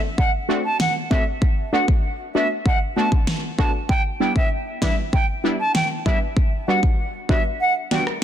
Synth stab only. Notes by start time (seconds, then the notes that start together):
0.49 A3 C4 D4 F#4
1.11 A3 C4 D4 F#4
1.73 A3 B3 D4 F#4
2.35 A3 B3 D4 F#4
2.96 A3 B3 D4 F#4
3.59 A3 B3 D4 F#4
4.20 G3 B3 D4 E4
4.82 G3 B3 D4 E4
5.44 G3 B3 D4 E4
6.06 G3 B3 D4 E4
6.68 G3 B3 D4 F#4
7.29 G3 B3 D4 F#4
7.91 G3 B3 D4 F#4